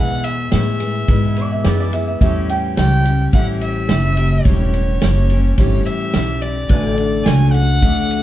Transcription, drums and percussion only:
0.24 ride
0.52 snare, ride
0.80 ride
1.08 kick, ride
1.36 ride
1.64 snare, ride
1.93 ride
2.21 kick, ride
2.49 ride
2.77 snare, ride
3.05 ride
3.33 kick, ride
3.61 ride
3.89 snare, ride
4.17 ride
4.45 kick, ride
4.74 ride
5.02 snare, ride
5.30 ride
5.58 kick, ride
5.86 ride
6.14 snare, ride
6.42 ride
6.69 kick, ride
6.98 ride
7.26 snare, ride
7.54 ride
7.82 kick, ride
8.11 ride

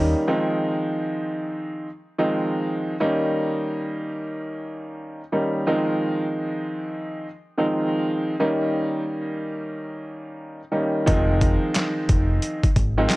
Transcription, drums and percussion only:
11.08 kick, closed hi-hat
11.41 kick, closed hi-hat
11.75 snare, clap, closed hi-hat
12.09 kick, closed hi-hat
12.42 closed hi-hat
12.63 kick, closed hi-hat
12.76 kick, closed hi-hat
13.10 snare, clap, closed hi-hat

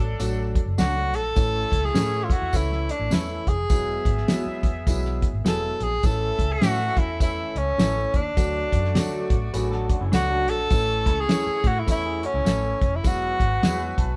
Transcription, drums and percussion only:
0.20 closed hi-hat, tambourine
0.55 kick, closed hi-hat
0.78 snare, closed hi-hat, tambourine
1.14 closed hi-hat
1.36 kick, closed hi-hat, tambourine
1.72 kick, closed hi-hat
1.85 snare
1.95 snare, closed hi-hat, tambourine
2.30 kick, closed hi-hat
2.53 kick, closed hi-hat, tambourine
2.72 snare
2.89 closed hi-hat
3.11 snare, closed hi-hat, tambourine
3.47 kick, closed hi-hat
3.70 kick, closed hi-hat, tambourine
4.05 kick, closed hi-hat
4.17 snare
4.28 snare, closed hi-hat, tambourine
4.63 kick, closed hi-hat
4.87 kick, closed hi-hat, tambourine
5.05 snare
5.22 kick, closed hi-hat
5.46 snare, closed hi-hat, tambourine
5.80 closed hi-hat
6.03 kick, closed hi-hat, tambourine
6.39 kick, closed hi-hat
6.62 snare, closed hi-hat, tambourine
6.97 kick, closed hi-hat
7.20 kick, closed hi-hat, tambourine
7.56 closed hi-hat
7.79 snare, closed hi-hat, tambourine
8.14 kick, closed hi-hat
8.37 kick, closed hi-hat, tambourine
8.72 kick, closed hi-hat
8.85 snare
8.95 snare, closed hi-hat, tambourine
9.30 kick, closed hi-hat
9.54 closed hi-hat, tambourine
9.72 snare
9.89 kick, closed hi-hat
10.13 snare, closed hi-hat, tambourine
10.48 closed hi-hat
10.70 kick, closed hi-hat, tambourine
11.06 kick, closed hi-hat
11.29 snare, closed hi-hat, tambourine
11.64 kick, closed hi-hat
11.88 kick, closed hi-hat, tambourine
12.23 closed hi-hat
12.46 snare, closed hi-hat, tambourine
12.81 kick, closed hi-hat
13.04 kick, closed hi-hat, tambourine
13.40 kick, closed hi-hat
13.63 snare, closed hi-hat, tambourine
13.98 kick, closed hi-hat

